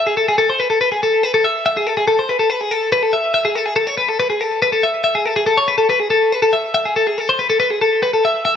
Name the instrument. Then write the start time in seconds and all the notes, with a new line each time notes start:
clean electric guitar
0.07 G#4
0.17 A4
0.28 G#4
0.38 A4
0.50 C5
0.60 B4
0.70 A4
0.81 B4
0.92 G#4
1.03 A4
1.23 B4
1.34 A4
1.45 E5
1.66 E5
1.77 G#4
1.87 A4
1.97 G#4
2.08 A4
2.19 C5
2.29 B4
2.39 A4
2.50 B4
2.61 G#4
2.71 A4
2.92 B4
3.03 A4
3.13 E5
3.34 E5
3.45 G#4
3.55 A4
3.66 G#4
3.76 A4
3.87 C#5
3.98 B4
4.09 A4
4.20 B4
4.30 G#4
4.41 A4
4.62 B4
4.72 A4
4.83 E5
5.04 E5
5.15 G#4
5.26 A4
5.36 G#4
5.46 A4
5.57 C#5
5.68 B4
5.78 A4
5.90 B4
6.00 G#4
6.10 A4
6.32 B4
6.42 A4
6.53 E5
6.74 E5
6.85 G#4
6.96 A4
7.07 G#4
7.18 A4
7.29 C5
7.39 B4
7.50 A4
7.60 B4
7.71 G#4
7.81 A4
8.03 B4
8.14 A4
8.25 E5
8.45 E5